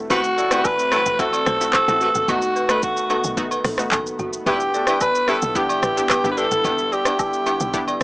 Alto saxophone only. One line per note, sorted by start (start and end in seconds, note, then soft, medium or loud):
0.11 0.67 F#4 loud
0.66 1.22 B4 loud
1.20 1.74 A4 loud
1.75 2.31 A4 loud
2.29 2.70 F#4 medium
2.71 2.82 B4 loud
2.84 3.34 F#4 medium
4.47 4.98 G4 loud
5.02 5.31 B4 loud
5.29 5.58 A4 loud
5.57 6.11 G4 loud
6.11 6.30 G4 medium
6.32 6.40 B4 medium
6.38 6.94 A4 loud
6.93 7.20 G4 medium
7.20 7.98 G4 medium